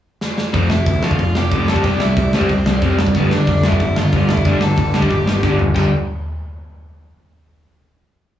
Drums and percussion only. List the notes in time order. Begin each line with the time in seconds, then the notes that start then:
0.21 snare
0.38 snare
0.54 kick, open hi-hat
0.70 snare
0.86 kick, open hi-hat
1.03 snare
1.11 kick
1.19 kick, open hi-hat
1.35 snare
1.52 kick, open hi-hat
1.68 snare
1.76 kick
1.84 kick, open hi-hat
2.00 snare
2.17 kick, open hi-hat
2.33 snare
2.41 kick
2.49 kick, open hi-hat
2.66 snare
2.82 kick, open hi-hat
2.99 snare
3.07 kick
3.15 kick, open hi-hat
3.31 snare
3.47 kick, open hi-hat
3.63 snare
3.72 kick
3.80 kick, open hi-hat
3.96 snare
4.12 kick, open hi-hat
4.29 snare
4.37 kick
4.45 kick, open hi-hat
4.61 snare
4.77 kick, open hi-hat
4.94 snare
5.02 kick
5.10 kick, open hi-hat
5.27 snare
5.43 kick, snare
5.59 floor tom
5.76 kick, china